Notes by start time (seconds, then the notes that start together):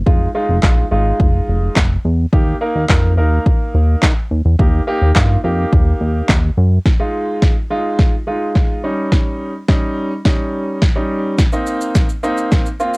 0.06 F1 G#3 D#4 F4, kick
0.35 G#3 D#4 F4
0.49 F1
0.63 A#1 G#3 D#4 F4, kick, snare, clap
0.91 G#1 G#3 D#4 F4
1.20 F1, kick
1.48 F1
1.76 F1, kick, snare, clap
2.05 E2
2.33 D#2 A#3 D#4 G4, kick
2.61 A#3 D#4 A#4
2.75 D#2
2.89 F2 A#3 D#4 A#4, kick, snare, clap
3.17 D#2 A#3 D#4 A#4
3.46 kick
3.74 D#2
4.03 D#3, kick, snare, clap
4.31 D#2
4.45 E2
4.59 D#2 A#3 D#4 G4, kick
4.87 A#3 D#4 G4
5.02 D#2
5.15 G2 A#3 D#4 F4, kick, snare, clap
5.44 F2 A#3 D#4 G4
5.73 D#2, kick
6.01 D#2
6.29 D#2, kick, snare, clap
6.57 F#2
6.86 kick, snare
7.00 G#3 D#4 F4
7.42 kick, snare
7.70 G#3 D#4 F4
7.99 kick, snare
8.27 G#3 D#4 F4
8.55 kick, snare
8.84 G3 C#4 D#4
9.12 kick, snare
9.68 G3 C#4 D#4, kick, snare
10.25 G3 C#4 D#4, kick, snare
10.82 kick, snare
10.96 G3 C#4 D#4
11.38 kick, snare, shaker
11.52 A#3 C4 D#4, shaker
11.67 shaker
11.81 shaker
11.95 kick, snare, shaker
12.09 shaker
12.23 A#3 C4 D#4, shaker
12.37 shaker
12.52 kick, snare, shaker
12.66 shaker
12.80 A#3 C4 F4, shaker
12.94 shaker